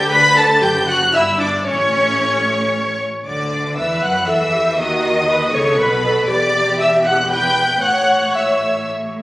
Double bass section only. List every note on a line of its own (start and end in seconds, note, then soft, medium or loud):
0.11 0.61 D2 medium
0.62 1.14 F#1 medium
1.14 1.67 G1 medium
1.67 3.06 A1 medium
3.27 3.74 D2 medium
3.78 4.03 E2 medium
4.03 4.28 F#2 medium
4.29 4.79 E2 medium
4.79 5.54 D#2 medium
5.55 5.79 C#2 medium
5.80 6.30 B1 medium
6.30 7.79 E1 medium
7.84 9.17 A1 medium